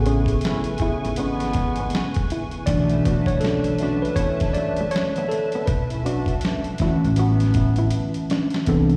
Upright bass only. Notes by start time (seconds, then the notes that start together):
Already playing: A1
0.81 muted upright bass stroke
1.05 G#1
2.68 B1
5.68 B1
6.81 muted upright bass stroke
7.05 A1
8.68 C2